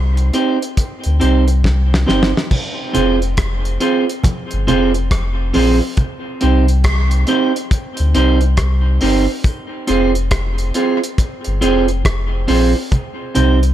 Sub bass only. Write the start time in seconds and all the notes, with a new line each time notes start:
Already playing: C2
1.06 D2
1.23 C2
1.65 C2
2.09 G1
2.96 F1
4.53 G1
4.69 F1
5.12 F1
5.56 A#1
6.43 C2
8.00 D2
8.16 C2
8.58 C2
9.03 G1
9.89 F1
11.47 G1
11.63 F1
12.06 F1
12.49 A#1
13.36 C2